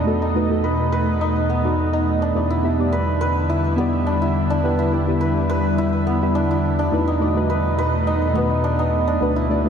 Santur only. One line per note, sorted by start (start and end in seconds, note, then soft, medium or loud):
0.00 1.49 B3 medium
0.00 0.28 D4 medium
0.00 0.63 B4 medium
0.22 1.21 D#4 medium
0.64 0.92 B4 medium
0.92 2.92 B4 medium
1.21 1.93 D#4 medium
1.50 3.78 B3 medium
1.93 2.28 D#4 medium
2.22 4.06 D4 medium
2.50 3.49 E4 medium
2.92 3.21 B4 medium
3.21 5.20 B4 medium
3.50 4.21 E4 medium
3.78 6.06 B3 medium
4.07 4.50 D4 medium
4.22 4.78 E4 medium
4.50 6.35 D4 medium
4.79 5.78 E4 medium
5.21 5.49 B4 medium
5.50 7.49 B4 medium
5.78 6.50 E4 medium
6.07 8.35 B3 medium
6.35 6.79 D4 medium
6.51 7.14 E4 medium
6.79 7.14 D4 medium
7.08 8.07 D#4 medium
7.50 7.78 B4 medium
7.78 9.69 B4 medium
8.07 8.70 D#4 medium
8.35 9.69 B3 medium
8.64 8.85 D4 medium
8.79 9.13 D#4 medium
9.07 9.69 D4 medium
9.36 9.69 E4 medium